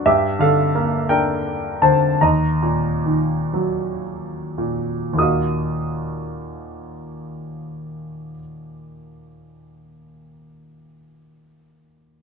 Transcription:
grand piano
0.06 G2 G4 E5
0.39 D3 A4 F5
0.75 A#3
1.09 D4 A#4 G5
1.82 D3 C5 A5
2.21 D#2 D#5 A#5
2.62 A#2
3.06 D#3
3.53 F#3
4.58 A#2
5.13 D#2 A#2
5.18 A#3 F#4 D#5 D#6
5.23 F5

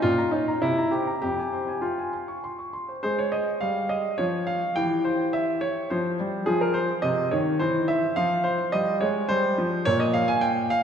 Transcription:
grand piano
0.02 A#2 F4
0.18 A#5
0.31 D#4 C#5
0.48 A#5
0.62 C3 E4
0.78 A#5
0.91 G4 C5
1.07 A#5
1.22 F2 G4
1.38 G#5
1.53 C5
1.68 G#5
1.81 F4 G5
1.98 G#5
2.13 C6
2.28 C#6
2.44 C6
2.59 C#6
2.73 C6
2.88 C5
3.03 G#3 G#4 C5
3.19 C#5
3.32 D#5
3.61 G3 F5
3.89 D#5
4.18 F3 C#5
4.47 F5
4.76 E3 G4 G5
5.05 C5
5.33 E5
5.61 C#5
5.90 F3 C5
6.20 G3
6.46 F3 F4 G#4
6.61 A#4
6.74 C5
7.02 C3 D#5
7.31 D#3 C#5
7.59 E3 C5
7.88 E5
8.16 F3 F4 F5
8.44 C5
8.72 G3 D#5
9.01 G#3 C#5
9.29 G3 C5
9.58 F3
9.85 A#2 A#4 C#5
10.00 D#5
10.14 F5
10.28 G#5
10.41 G5
10.70 F5

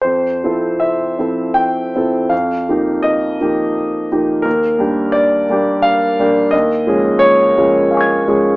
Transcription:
grand piano
0.02 F2 C5
0.44 F3 C4 E4 A4
0.80 E5
1.19 F3 C4 E4 A4
1.54 G5
1.96 F3 C4 E4 A4
2.30 F2 F5
2.69 F3 A#3 D#4 G4
3.02 D#5
3.41 F3 A#3 D#4 G4
4.12 F3 A#3 D#4 G4
4.42 D#2 A#4
4.79 G3 A#3 D4 G4
5.12 D5
5.50 G3 A#3 D4 G4
5.82 F5
6.19 G3 A#3 D4 G4
6.51 D#2 D#5
6.87 F3 G#3 C#4 G#4
7.19 C#5
7.57 F3 G#3 C#4 G#4
7.91 F5 G#5
7.97 C#6 G#6
8.28 F3 G#3 C#4 G#4

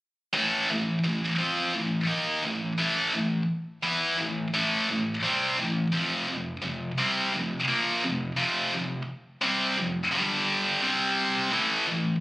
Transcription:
distorted electric guitar
0.34 A2 E3 A3
0.70 A2 E3
1.04 A2 E3
1.39 F3 C4 F4
1.74 A2 E3
2.07 D#3 A#3 D#4
2.44 A2 E3
2.78 A2 E3 A3
3.14 A2 E3
3.83 E3 B3 E4
4.19 A2 E3
4.54 A2 E3 A3
4.89 A2 E3
5.23 C3 G3 C4
5.58 A2 E3
5.92 F2 C3 F3
6.28 F2 C3
6.62 F2 C3
6.98 C3 G3 C4
7.33 F2 C3
7.68 A#2 F3 A#3
8.04 F2 C3
8.37 F2 C3 F3
8.74 F2 C3
9.41 C3 G3 C4
9.77 F2 C3
10.11 G2 D3 G3
10.82 C3 G3 C4
11.51 A2 E3 A3
11.87 A2 E3

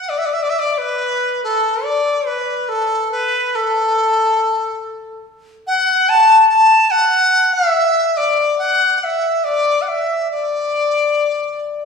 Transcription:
dizi
Already playing: F#5
0.09 D5
0.18 E5
0.26 D5
0.33 E5
0.43 D5
0.50 E5
0.59 D5
0.72 D5
0.78 B4
1.44 A4
1.84 D5
2.27 B4
2.69 A4
3.12 B4
3.55 A4
5.67 F#5
6.09 A5
6.49 A5
6.91 F#5
7.53 E5
8.17 D5
8.58 F#5
8.98 F#5
9.04 E5
9.44 D5
9.82 F#5
9.88 E5
10.31 D5

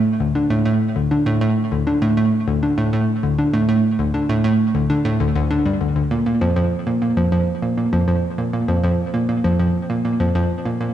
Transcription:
synth arpeggio sound
0.20 D2
0.35 D3
0.50 A2
0.65 A2
0.96 D2
1.11 D3
1.26 A2
1.41 A2
1.72 D2
1.87 D3
2.02 A2
2.17 A2
2.48 D2
2.63 D3
2.78 A2
2.93 A2
3.23 D2
3.38 D3
3.53 A2
3.69 A2
3.99 D2
4.14 D3
4.29 A2
4.44 A2
4.75 D2
4.90 D3
5.05 A2
5.20 D2
5.35 D2
5.51 D3
5.66 G2
5.81 D2
5.96 D2
6.11 A#2
6.26 A#2
6.41 F2
6.56 F2
6.87 A#2
7.02 A#2
7.17 F2
7.32 F2
7.62 A#2
7.77 A#2
7.93 F2
8.08 F2
8.38 A#2
8.53 A#2
8.68 F2
8.84 F2
9.14 A#2
9.29 A#2
9.44 F2
9.59 F2
9.90 A#2
10.05 A#2
10.20 F2
10.35 F2
10.65 A#2
10.81 A#2

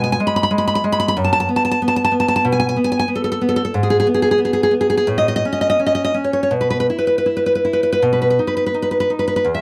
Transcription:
nylon-string guitar
Already playing: B2 G#3
0.04 G#5
0.12 G#5
0.20 G#3
0.27 B5
0.36 B5
0.43 B5
0.51 G#3
0.58 B5
0.67 B5
0.75 B5
0.84 G#3
0.92 B5
1.00 B5
1.08 B5
1.17 F#2
1.24 A5
1.33 A5
1.40 A5
1.49 B3
1.56 A5
1.65 A5
1.71 A5
1.82 B3
1.88 A5
1.96 A5
2.04 A5
2.12 B3
2.20 A5
2.28 A5
2.36 A5
2.45 B2
2.52 G#5
2.60 G#5
2.69 G#5
2.76 B3
2.84 G#5
2.92 G#5
2.99 G#5
3.08 B3
3.16 A4
3.24 A4
3.32 A4
3.41 B3
3.49 A4
3.56 A4
3.65 A4
3.74 G#2
3.83 G#4
3.90 G#4
4.00 G#4
4.07 B3
4.14 G#4
4.22 G#4
4.31 G#4
4.38 B3
4.45 G#4
4.53 G#4
4.63 G#4
4.71 B3
4.81 G#4
4.90 G#4
4.97 G#4
5.07 A2
5.18 D#5
5.28 D#5
5.36 D#5
5.45 C#4
5.53 D#5
5.61 D#5
5.70 D#5
5.79 C#4
5.86 D#5
5.95 D#5
6.04 D#5
6.14 C#4
6.24 C#5
6.33 C#5
6.43 C#5
6.51 B2
6.61 B4
6.70 B4
6.80 B4
6.90 E4
6.99 B4
7.07 B4
7.18 B4
7.26 E4
7.37 B4
7.46 B4
7.55 B4
7.65 E4
7.73 B4
7.83 B4
7.92 B4
8.02 B2
8.13 B4
8.22 B4
8.30 B4
8.39 D#4
8.47 B4
8.57 B4
8.66 B4
8.74 D#4
8.82 B4
8.91 B4
9.00 B4
9.10 D#4
9.19 B4
9.28 B4
9.36 B4
9.45 E2
9.54 E5

